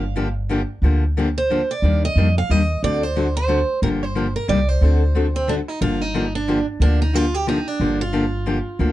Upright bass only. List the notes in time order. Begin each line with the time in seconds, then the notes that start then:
Already playing: G1
0.82 D2
1.82 D#2
2.16 F2
2.49 D#2
2.83 D2
3.82 G1
4.49 C2
4.81 D2
5.81 G1
6.80 D2
7.80 G1
8.79 D2